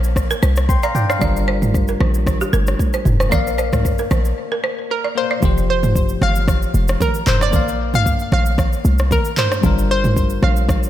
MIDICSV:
0, 0, Header, 1, 6, 480
1, 0, Start_track
1, 0, Key_signature, -2, "major"
1, 0, Tempo, 526316
1, 1109, Time_signature, 4, 2, 24, 8
1, 9939, End_track
2, 0, Start_track
2, 0, Title_t, "Balafon"
2, 0, Program_c, 0, 12
2, 280, Note_on_c, 0, 70, 83
2, 353, Note_off_c, 0, 70, 0
2, 389, Note_on_c, 0, 72, 88
2, 462, Note_off_c, 0, 72, 0
2, 760, Note_on_c, 0, 74, 77
2, 833, Note_off_c, 0, 74, 0
2, 1000, Note_on_c, 0, 74, 76
2, 1073, Note_off_c, 0, 74, 0
2, 1109, Note_on_c, 0, 74, 101
2, 1182, Note_off_c, 0, 74, 0
2, 1349, Note_on_c, 0, 72, 88
2, 1422, Note_off_c, 0, 72, 0
2, 1721, Note_on_c, 0, 70, 68
2, 1794, Note_off_c, 0, 70, 0
2, 1829, Note_on_c, 0, 72, 79
2, 1902, Note_off_c, 0, 72, 0
2, 2200, Note_on_c, 0, 67, 79
2, 2273, Note_off_c, 0, 67, 0
2, 2308, Note_on_c, 0, 70, 92
2, 2381, Note_off_c, 0, 70, 0
2, 2680, Note_on_c, 0, 72, 79
2, 2753, Note_off_c, 0, 72, 0
2, 2920, Note_on_c, 0, 72, 73
2, 2993, Note_off_c, 0, 72, 0
2, 3028, Note_on_c, 0, 74, 106
2, 3101, Note_off_c, 0, 74, 0
2, 3268, Note_on_c, 0, 72, 90
2, 3341, Note_off_c, 0, 72, 0
2, 3641, Note_on_c, 0, 70, 68
2, 3714, Note_off_c, 0, 70, 0
2, 3748, Note_on_c, 0, 72, 82
2, 3821, Note_off_c, 0, 72, 0
2, 4120, Note_on_c, 0, 70, 83
2, 4193, Note_off_c, 0, 70, 0
2, 4229, Note_on_c, 0, 72, 90
2, 4302, Note_off_c, 0, 72, 0
2, 4600, Note_on_c, 0, 74, 75
2, 4673, Note_off_c, 0, 74, 0
2, 4841, Note_on_c, 0, 74, 81
2, 4914, Note_off_c, 0, 74, 0
2, 9939, End_track
3, 0, Start_track
3, 0, Title_t, "Synth pluck"
3, 0, Program_c, 1, 84
3, 4480, Note_on_c, 1, 70, 92
3, 4720, Note_on_c, 1, 72, 102
3, 4721, Note_off_c, 1, 70, 0
3, 5188, Note_off_c, 1, 72, 0
3, 5199, Note_on_c, 1, 72, 103
3, 5680, Note_on_c, 1, 77, 114
3, 5688, Note_off_c, 1, 72, 0
3, 6400, Note_on_c, 1, 70, 95
3, 6416, Note_off_c, 1, 77, 0
3, 6640, Note_on_c, 1, 72, 98
3, 6641, Note_off_c, 1, 70, 0
3, 6697, Note_off_c, 1, 72, 0
3, 6772, Note_on_c, 1, 74, 106
3, 7252, Note_on_c, 1, 77, 107
3, 7261, Note_off_c, 1, 74, 0
3, 7589, Note_off_c, 1, 77, 0
3, 7600, Note_on_c, 1, 77, 114
3, 8278, Note_off_c, 1, 77, 0
3, 8319, Note_on_c, 1, 70, 91
3, 8425, Note_off_c, 1, 70, 0
3, 8559, Note_on_c, 1, 72, 100
3, 9028, Note_off_c, 1, 72, 0
3, 9039, Note_on_c, 1, 72, 97
3, 9518, Note_on_c, 1, 77, 95
3, 9528, Note_off_c, 1, 72, 0
3, 9939, Note_off_c, 1, 77, 0
3, 9939, End_track
4, 0, Start_track
4, 0, Title_t, "Tine electric piano"
4, 0, Program_c, 2, 4
4, 0, Control_c, 2, 64, 127
4, 0, Note_on_c, 2, 58, 77
4, 0, Note_on_c, 2, 70, 69
4, 0, Note_on_c, 2, 74, 72
4, 0, Note_on_c, 2, 77, 85
4, 589, Note_off_c, 2, 58, 0
4, 596, Note_off_c, 2, 70, 0
4, 604, Note_off_c, 2, 74, 0
4, 612, Note_off_c, 2, 77, 0
4, 628, Note_on_c, 2, 84, 67
4, 634, Note_on_c, 2, 79, 56
4, 754, Note_off_c, 2, 84, 0
4, 757, Note_off_c, 2, 79, 0
4, 760, Note_on_c, 2, 82, 72
4, 765, Note_on_c, 2, 77, 59
4, 863, Note_off_c, 2, 82, 0
4, 866, Note_off_c, 2, 77, 0
4, 868, Note_on_c, 2, 79, 72
4, 874, Note_on_c, 2, 74, 63
4, 994, Note_off_c, 2, 79, 0
4, 997, Note_off_c, 2, 74, 0
4, 1000, Note_on_c, 2, 77, 69
4, 1006, Note_on_c, 2, 72, 59
4, 1086, Note_on_c, 2, 55, 82
4, 1101, Note_on_c, 2, 62, 75
4, 1116, Note_on_c, 2, 65, 72
4, 1121, Control_c, 2, 64, 0
4, 1131, Note_on_c, 2, 70, 83
4, 1228, Note_off_c, 2, 77, 0
4, 1231, Note_off_c, 2, 72, 0
4, 1263, Control_c, 2, 64, 127
4, 2981, Note_off_c, 2, 55, 0
4, 2988, Note_off_c, 2, 62, 0
4, 2996, Note_off_c, 2, 65, 0
4, 3003, Note_off_c, 2, 70, 0
4, 3005, Note_on_c, 2, 58, 79
4, 3020, Note_on_c, 2, 70, 70
4, 3035, Note_on_c, 2, 74, 74
4, 3041, Control_c, 2, 64, 0
4, 3051, Note_on_c, 2, 77, 86
4, 3221, Control_c, 2, 64, 127
4, 4663, Note_off_c, 2, 58, 0
4, 4671, Note_off_c, 2, 70, 0
4, 4679, Note_off_c, 2, 74, 0
4, 4686, Note_off_c, 2, 77, 0
4, 4697, Note_on_c, 2, 58, 57
4, 4705, Note_on_c, 2, 70, 54
4, 4712, Note_on_c, 2, 74, 55
4, 4720, Note_on_c, 2, 77, 65
4, 4925, Note_on_c, 2, 53, 68
4, 4941, Note_on_c, 2, 65, 62
4, 4943, Note_off_c, 2, 58, 0
4, 4947, Note_off_c, 2, 70, 0
4, 4951, Note_off_c, 2, 74, 0
4, 4954, Note_off_c, 2, 77, 0
4, 4956, Note_on_c, 2, 67, 63
4, 4961, Control_c, 2, 64, 0
4, 4971, Note_on_c, 2, 72, 77
4, 5121, Control_c, 2, 64, 127
4, 6821, Note_off_c, 2, 53, 0
4, 6828, Note_off_c, 2, 65, 0
4, 6836, Note_off_c, 2, 67, 0
4, 6843, Note_off_c, 2, 72, 0
4, 6846, Note_on_c, 2, 58, 68
4, 6861, Note_on_c, 2, 70, 64
4, 6876, Note_on_c, 2, 74, 66
4, 6880, Control_c, 2, 64, 0
4, 6892, Note_on_c, 2, 77, 78
4, 7044, Control_c, 2, 64, 127
4, 8741, Note_off_c, 2, 58, 0
4, 8748, Note_off_c, 2, 70, 0
4, 8756, Note_off_c, 2, 74, 0
4, 8764, Note_off_c, 2, 77, 0
4, 8765, Note_on_c, 2, 55, 70
4, 8781, Note_on_c, 2, 62, 64
4, 8796, Note_on_c, 2, 65, 65
4, 8799, Control_c, 2, 64, 0
4, 8811, Note_on_c, 2, 70, 79
4, 8984, Control_c, 2, 64, 127
4, 9939, Note_off_c, 2, 55, 0
4, 9939, Note_off_c, 2, 62, 0
4, 9939, Note_off_c, 2, 65, 0
4, 9939, Note_off_c, 2, 70, 0
4, 9939, End_track
5, 0, Start_track
5, 0, Title_t, "808-style bass"
5, 0, Program_c, 3, 38
5, 0, Note_on_c, 3, 34, 97
5, 313, Note_off_c, 3, 34, 0
5, 389, Note_on_c, 3, 36, 105
5, 702, Note_off_c, 3, 36, 0
5, 1108, Note_on_c, 3, 31, 96
5, 1793, Note_off_c, 3, 31, 0
5, 1829, Note_on_c, 3, 34, 90
5, 2233, Note_off_c, 3, 34, 0
5, 2309, Note_on_c, 3, 31, 93
5, 2511, Note_off_c, 3, 31, 0
5, 2789, Note_on_c, 3, 29, 98
5, 3028, Note_on_c, 3, 34, 111
5, 3042, Note_off_c, 3, 29, 0
5, 3713, Note_off_c, 3, 34, 0
5, 3749, Note_on_c, 3, 34, 89
5, 3951, Note_off_c, 3, 34, 0
5, 4949, Note_on_c, 3, 29, 102
5, 5633, Note_off_c, 3, 29, 0
5, 5669, Note_on_c, 3, 31, 98
5, 6073, Note_off_c, 3, 31, 0
5, 6149, Note_on_c, 3, 29, 95
5, 6351, Note_off_c, 3, 29, 0
5, 6629, Note_on_c, 3, 29, 91
5, 6869, Note_on_c, 3, 34, 110
5, 6882, Note_off_c, 3, 29, 0
5, 7553, Note_off_c, 3, 34, 0
5, 7589, Note_on_c, 3, 34, 99
5, 7993, Note_off_c, 3, 34, 0
5, 8069, Note_on_c, 3, 36, 101
5, 8382, Note_off_c, 3, 36, 0
5, 8788, Note_on_c, 3, 31, 99
5, 9472, Note_off_c, 3, 31, 0
5, 9508, Note_on_c, 3, 34, 94
5, 9913, Note_off_c, 3, 34, 0
5, 9939, End_track
6, 0, Start_track
6, 0, Title_t, "Drums"
6, 35, Note_on_c, 9, 82, 54
6, 126, Note_off_c, 9, 82, 0
6, 146, Note_on_c, 9, 36, 115
6, 150, Note_on_c, 9, 37, 94
6, 154, Note_on_c, 9, 82, 78
6, 237, Note_off_c, 9, 36, 0
6, 242, Note_off_c, 9, 37, 0
6, 245, Note_off_c, 9, 82, 0
6, 280, Note_on_c, 9, 82, 53
6, 371, Note_off_c, 9, 82, 0
6, 390, Note_on_c, 9, 82, 60
6, 481, Note_off_c, 9, 82, 0
6, 514, Note_on_c, 9, 82, 48
6, 525, Note_on_c, 9, 37, 92
6, 605, Note_off_c, 9, 82, 0
6, 616, Note_off_c, 9, 37, 0
6, 628, Note_on_c, 9, 36, 98
6, 636, Note_on_c, 9, 82, 76
6, 719, Note_off_c, 9, 36, 0
6, 727, Note_off_c, 9, 82, 0
6, 756, Note_on_c, 9, 82, 52
6, 847, Note_off_c, 9, 82, 0
6, 865, Note_on_c, 9, 45, 97
6, 871, Note_on_c, 9, 82, 58
6, 957, Note_off_c, 9, 45, 0
6, 962, Note_off_c, 9, 82, 0
6, 1000, Note_on_c, 9, 37, 90
6, 1005, Note_on_c, 9, 82, 55
6, 1091, Note_off_c, 9, 37, 0
6, 1096, Note_off_c, 9, 82, 0
6, 1108, Note_on_c, 9, 36, 110
6, 1108, Note_on_c, 9, 82, 78
6, 1109, Note_on_c, 9, 64, 84
6, 1200, Note_off_c, 9, 36, 0
6, 1200, Note_off_c, 9, 64, 0
6, 1200, Note_off_c, 9, 82, 0
6, 1246, Note_on_c, 9, 82, 56
6, 1337, Note_off_c, 9, 82, 0
6, 1479, Note_on_c, 9, 45, 96
6, 1482, Note_on_c, 9, 82, 49
6, 1485, Note_on_c, 9, 63, 73
6, 1571, Note_off_c, 9, 45, 0
6, 1573, Note_off_c, 9, 82, 0
6, 1576, Note_off_c, 9, 63, 0
6, 1591, Note_on_c, 9, 36, 95
6, 1595, Note_on_c, 9, 82, 79
6, 1682, Note_off_c, 9, 36, 0
6, 1686, Note_off_c, 9, 82, 0
6, 1713, Note_on_c, 9, 82, 48
6, 1804, Note_off_c, 9, 82, 0
6, 1828, Note_on_c, 9, 63, 77
6, 1828, Note_on_c, 9, 64, 75
6, 1830, Note_on_c, 9, 37, 95
6, 1919, Note_off_c, 9, 63, 0
6, 1919, Note_off_c, 9, 64, 0
6, 1921, Note_off_c, 9, 37, 0
6, 1955, Note_on_c, 9, 82, 56
6, 2046, Note_off_c, 9, 82, 0
6, 2066, Note_on_c, 9, 36, 109
6, 2066, Note_on_c, 9, 64, 73
6, 2071, Note_on_c, 9, 37, 102
6, 2074, Note_on_c, 9, 82, 80
6, 2157, Note_off_c, 9, 36, 0
6, 2157, Note_off_c, 9, 64, 0
6, 2162, Note_off_c, 9, 37, 0
6, 2165, Note_off_c, 9, 82, 0
6, 2200, Note_on_c, 9, 82, 57
6, 2291, Note_off_c, 9, 82, 0
6, 2310, Note_on_c, 9, 82, 60
6, 2316, Note_on_c, 9, 63, 80
6, 2401, Note_off_c, 9, 82, 0
6, 2407, Note_off_c, 9, 63, 0
6, 2435, Note_on_c, 9, 82, 47
6, 2446, Note_on_c, 9, 37, 89
6, 2526, Note_off_c, 9, 82, 0
6, 2537, Note_off_c, 9, 37, 0
6, 2548, Note_on_c, 9, 36, 93
6, 2549, Note_on_c, 9, 63, 85
6, 2556, Note_on_c, 9, 82, 75
6, 2639, Note_off_c, 9, 36, 0
6, 2641, Note_off_c, 9, 63, 0
6, 2647, Note_off_c, 9, 82, 0
6, 2676, Note_on_c, 9, 82, 56
6, 2767, Note_off_c, 9, 82, 0
6, 2785, Note_on_c, 9, 45, 93
6, 2791, Note_on_c, 9, 63, 56
6, 2791, Note_on_c, 9, 82, 58
6, 2876, Note_off_c, 9, 45, 0
6, 2882, Note_off_c, 9, 82, 0
6, 2883, Note_off_c, 9, 63, 0
6, 2919, Note_on_c, 9, 37, 92
6, 2924, Note_on_c, 9, 82, 55
6, 3011, Note_off_c, 9, 37, 0
6, 3015, Note_off_c, 9, 82, 0
6, 3028, Note_on_c, 9, 36, 115
6, 3028, Note_on_c, 9, 82, 79
6, 3029, Note_on_c, 9, 64, 86
6, 3119, Note_off_c, 9, 36, 0
6, 3119, Note_off_c, 9, 82, 0
6, 3120, Note_off_c, 9, 64, 0
6, 3166, Note_on_c, 9, 82, 59
6, 3257, Note_off_c, 9, 82, 0
6, 3268, Note_on_c, 9, 82, 43
6, 3359, Note_off_c, 9, 82, 0
6, 3399, Note_on_c, 9, 45, 95
6, 3401, Note_on_c, 9, 36, 94
6, 3402, Note_on_c, 9, 82, 47
6, 3404, Note_on_c, 9, 37, 94
6, 3406, Note_on_c, 9, 63, 75
6, 3491, Note_off_c, 9, 45, 0
6, 3493, Note_off_c, 9, 36, 0
6, 3493, Note_off_c, 9, 82, 0
6, 3495, Note_off_c, 9, 37, 0
6, 3497, Note_off_c, 9, 63, 0
6, 3511, Note_on_c, 9, 36, 94
6, 3515, Note_on_c, 9, 82, 82
6, 3602, Note_off_c, 9, 36, 0
6, 3606, Note_off_c, 9, 82, 0
6, 3633, Note_on_c, 9, 82, 48
6, 3725, Note_off_c, 9, 82, 0
6, 3748, Note_on_c, 9, 63, 76
6, 3748, Note_on_c, 9, 64, 79
6, 3750, Note_on_c, 9, 82, 51
6, 3751, Note_on_c, 9, 37, 98
6, 3839, Note_off_c, 9, 63, 0
6, 3839, Note_off_c, 9, 64, 0
6, 3841, Note_off_c, 9, 82, 0
6, 3842, Note_off_c, 9, 37, 0
6, 3876, Note_on_c, 9, 82, 54
6, 3967, Note_off_c, 9, 82, 0
6, 4949, Note_on_c, 9, 36, 110
6, 4949, Note_on_c, 9, 64, 88
6, 4949, Note_on_c, 9, 82, 75
6, 5040, Note_off_c, 9, 36, 0
6, 5040, Note_off_c, 9, 64, 0
6, 5041, Note_off_c, 9, 82, 0
6, 5087, Note_on_c, 9, 82, 59
6, 5178, Note_off_c, 9, 82, 0
6, 5320, Note_on_c, 9, 45, 98
6, 5322, Note_on_c, 9, 82, 49
6, 5325, Note_on_c, 9, 63, 75
6, 5411, Note_off_c, 9, 45, 0
6, 5413, Note_off_c, 9, 82, 0
6, 5417, Note_off_c, 9, 63, 0
6, 5431, Note_on_c, 9, 36, 95
6, 5435, Note_on_c, 9, 82, 81
6, 5523, Note_off_c, 9, 36, 0
6, 5527, Note_off_c, 9, 82, 0
6, 5554, Note_on_c, 9, 82, 51
6, 5645, Note_off_c, 9, 82, 0
6, 5668, Note_on_c, 9, 63, 77
6, 5668, Note_on_c, 9, 64, 77
6, 5671, Note_on_c, 9, 37, 100
6, 5759, Note_off_c, 9, 63, 0
6, 5759, Note_off_c, 9, 64, 0
6, 5762, Note_off_c, 9, 37, 0
6, 5796, Note_on_c, 9, 82, 58
6, 5887, Note_off_c, 9, 82, 0
6, 5906, Note_on_c, 9, 64, 74
6, 5907, Note_on_c, 9, 36, 116
6, 5912, Note_on_c, 9, 37, 103
6, 5915, Note_on_c, 9, 82, 79
6, 5997, Note_off_c, 9, 64, 0
6, 5998, Note_off_c, 9, 36, 0
6, 6003, Note_off_c, 9, 37, 0
6, 6007, Note_off_c, 9, 82, 0
6, 6041, Note_on_c, 9, 82, 58
6, 6132, Note_off_c, 9, 82, 0
6, 6151, Note_on_c, 9, 82, 61
6, 6156, Note_on_c, 9, 63, 82
6, 6242, Note_off_c, 9, 82, 0
6, 6247, Note_off_c, 9, 63, 0
6, 6275, Note_on_c, 9, 82, 52
6, 6286, Note_on_c, 9, 37, 100
6, 6366, Note_off_c, 9, 82, 0
6, 6378, Note_off_c, 9, 37, 0
6, 6389, Note_on_c, 9, 36, 96
6, 6390, Note_on_c, 9, 63, 89
6, 6390, Note_on_c, 9, 64, 90
6, 6397, Note_on_c, 9, 82, 80
6, 6480, Note_off_c, 9, 36, 0
6, 6481, Note_off_c, 9, 63, 0
6, 6481, Note_off_c, 9, 64, 0
6, 6488, Note_off_c, 9, 82, 0
6, 6516, Note_on_c, 9, 82, 55
6, 6607, Note_off_c, 9, 82, 0
6, 6626, Note_on_c, 9, 45, 98
6, 6632, Note_on_c, 9, 39, 95
6, 6632, Note_on_c, 9, 63, 60
6, 6632, Note_on_c, 9, 82, 60
6, 6717, Note_off_c, 9, 45, 0
6, 6723, Note_off_c, 9, 39, 0
6, 6723, Note_off_c, 9, 63, 0
6, 6723, Note_off_c, 9, 82, 0
6, 6760, Note_on_c, 9, 37, 99
6, 6765, Note_on_c, 9, 82, 57
6, 6851, Note_off_c, 9, 37, 0
6, 6856, Note_off_c, 9, 82, 0
6, 6869, Note_on_c, 9, 36, 109
6, 6869, Note_on_c, 9, 64, 87
6, 6869, Note_on_c, 9, 82, 84
6, 6960, Note_off_c, 9, 36, 0
6, 6960, Note_off_c, 9, 64, 0
6, 6960, Note_off_c, 9, 82, 0
6, 7006, Note_on_c, 9, 82, 59
6, 7098, Note_off_c, 9, 82, 0
6, 7240, Note_on_c, 9, 45, 102
6, 7243, Note_on_c, 9, 82, 48
6, 7245, Note_on_c, 9, 63, 73
6, 7331, Note_off_c, 9, 45, 0
6, 7334, Note_off_c, 9, 82, 0
6, 7336, Note_off_c, 9, 63, 0
6, 7351, Note_on_c, 9, 36, 96
6, 7356, Note_on_c, 9, 82, 76
6, 7442, Note_off_c, 9, 36, 0
6, 7447, Note_off_c, 9, 82, 0
6, 7473, Note_on_c, 9, 82, 49
6, 7565, Note_off_c, 9, 82, 0
6, 7587, Note_on_c, 9, 63, 75
6, 7587, Note_on_c, 9, 64, 78
6, 7591, Note_on_c, 9, 37, 98
6, 7678, Note_off_c, 9, 63, 0
6, 7678, Note_off_c, 9, 64, 0
6, 7682, Note_off_c, 9, 37, 0
6, 7715, Note_on_c, 9, 82, 56
6, 7806, Note_off_c, 9, 82, 0
6, 7825, Note_on_c, 9, 64, 74
6, 7826, Note_on_c, 9, 36, 114
6, 7831, Note_on_c, 9, 37, 103
6, 7834, Note_on_c, 9, 82, 80
6, 7916, Note_off_c, 9, 64, 0
6, 7917, Note_off_c, 9, 36, 0
6, 7922, Note_off_c, 9, 37, 0
6, 7926, Note_off_c, 9, 82, 0
6, 7960, Note_on_c, 9, 82, 59
6, 8051, Note_off_c, 9, 82, 0
6, 8070, Note_on_c, 9, 82, 62
6, 8075, Note_on_c, 9, 63, 84
6, 8161, Note_off_c, 9, 82, 0
6, 8166, Note_off_c, 9, 63, 0
6, 8194, Note_on_c, 9, 82, 49
6, 8205, Note_on_c, 9, 37, 92
6, 8286, Note_off_c, 9, 82, 0
6, 8297, Note_off_c, 9, 37, 0
6, 8308, Note_on_c, 9, 36, 96
6, 8309, Note_on_c, 9, 63, 84
6, 8309, Note_on_c, 9, 64, 84
6, 8315, Note_on_c, 9, 82, 78
6, 8399, Note_off_c, 9, 36, 0
6, 8400, Note_off_c, 9, 63, 0
6, 8400, Note_off_c, 9, 64, 0
6, 8407, Note_off_c, 9, 82, 0
6, 8435, Note_on_c, 9, 82, 55
6, 8526, Note_off_c, 9, 82, 0
6, 8544, Note_on_c, 9, 45, 98
6, 8550, Note_on_c, 9, 39, 95
6, 8550, Note_on_c, 9, 82, 60
6, 8551, Note_on_c, 9, 63, 58
6, 8636, Note_off_c, 9, 45, 0
6, 8641, Note_off_c, 9, 82, 0
6, 8642, Note_off_c, 9, 39, 0
6, 8642, Note_off_c, 9, 63, 0
6, 8679, Note_on_c, 9, 37, 96
6, 8684, Note_on_c, 9, 82, 56
6, 8770, Note_off_c, 9, 37, 0
6, 8775, Note_off_c, 9, 82, 0
6, 8788, Note_on_c, 9, 36, 109
6, 8788, Note_on_c, 9, 82, 80
6, 8789, Note_on_c, 9, 64, 91
6, 8879, Note_off_c, 9, 36, 0
6, 8879, Note_off_c, 9, 82, 0
6, 8880, Note_off_c, 9, 64, 0
6, 8925, Note_on_c, 9, 82, 59
6, 9016, Note_off_c, 9, 82, 0
6, 9159, Note_on_c, 9, 45, 99
6, 9161, Note_on_c, 9, 82, 50
6, 9165, Note_on_c, 9, 63, 77
6, 9250, Note_off_c, 9, 45, 0
6, 9252, Note_off_c, 9, 82, 0
6, 9257, Note_off_c, 9, 63, 0
6, 9270, Note_on_c, 9, 36, 94
6, 9274, Note_on_c, 9, 82, 79
6, 9362, Note_off_c, 9, 36, 0
6, 9365, Note_off_c, 9, 82, 0
6, 9392, Note_on_c, 9, 82, 51
6, 9484, Note_off_c, 9, 82, 0
6, 9508, Note_on_c, 9, 63, 75
6, 9508, Note_on_c, 9, 64, 78
6, 9510, Note_on_c, 9, 37, 98
6, 9599, Note_off_c, 9, 63, 0
6, 9599, Note_off_c, 9, 64, 0
6, 9601, Note_off_c, 9, 37, 0
6, 9635, Note_on_c, 9, 82, 54
6, 9726, Note_off_c, 9, 82, 0
6, 9746, Note_on_c, 9, 36, 116
6, 9746, Note_on_c, 9, 64, 76
6, 9751, Note_on_c, 9, 37, 100
6, 9754, Note_on_c, 9, 82, 78
6, 9837, Note_off_c, 9, 36, 0
6, 9837, Note_off_c, 9, 64, 0
6, 9842, Note_off_c, 9, 37, 0
6, 9845, Note_off_c, 9, 82, 0
6, 9880, Note_on_c, 9, 82, 58
6, 9939, Note_off_c, 9, 82, 0
6, 9939, End_track
0, 0, End_of_file